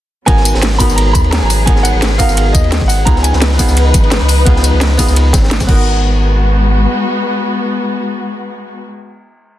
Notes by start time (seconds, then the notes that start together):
0.26 G#1 F#3 B3 D#4 F#4 G#4 A#4 G#5, kick, closed hi-hat, ride
0.37 snare
0.45 closed hi-hat, ride, tambourine
0.54 G#1, snare
0.62 snare, closed hi-hat, ride
0.72 snare
0.78 B3 D#4 F#4 A#4 B5, kick, open hi-hat, ride, tambourine
0.90 G#1, snare, tambourine
0.96 A#5, closed hi-hat, ride
1.13 D#2 B5, kick, closed hi-hat, ride, tambourine
1.24 ride
1.31 A#5, snare, closed hi-hat, ride
1.39 G#1 G#5
1.45 A#5
1.50 open hi-hat, ride, tambourine
1.66 G#1 B3 D#4 F#4 A#4 G#5, kick, closed hi-hat, ride
1.76 snare
1.83 F#5, closed hi-hat, ride, tambourine
1.94 G#1
2.02 snare, closed hi-hat, ride
2.18 B3 D#4 F#4 A#4 F5, kick, open hi-hat, ride, tambourine
2.29 G#1, snare, tambourine
2.37 closed hi-hat, ride
2.53 D#2 D#5, kick, closed hi-hat, ride, tambourine
2.64 ride
2.72 snare, closed hi-hat, ride
2.81 G#1, kick, snare
2.88 F#5, open hi-hat, ride, tambourine
3.05 C#2 F3 B3 D#4 F4 G#4 B4 A#5, kick, closed hi-hat, ride
3.16 snare
3.23 G#5, closed hi-hat, ride, tambourine
3.33 C#2, snare
3.41 snare, closed hi-hat, ride
3.52 snare
3.58 B3 D#4 F4 G#4, kick, open hi-hat, ride, tambourine
3.68 C#2, snare, tambourine
3.77 closed hi-hat, ride
3.94 G#1, kick, closed hi-hat, ride, tambourine
4.04 ride
4.11 snare, closed hi-hat, ride
4.21 C#2
4.28 open hi-hat, ride, tambourine
4.45 C#2 B3 D#4 F4 G#4, kick, closed hi-hat, ride
4.56 snare
4.64 closed hi-hat, ride, tambourine
4.73 C#2
4.81 snare, closed hi-hat, ride
4.98 B3 D#4 F4 G#4, kick, open hi-hat, ride, tambourine
5.08 C#2, snare, tambourine
5.16 closed hi-hat, ride
5.33 G#1, kick, snare, closed hi-hat, ride, tambourine
5.44 snare
5.51 snare, closed hi-hat, ride
5.60 C#2, kick, snare, ride, tambourine
5.67 G#1 G#3 B3 D#4 F#4 A#4, kick, crash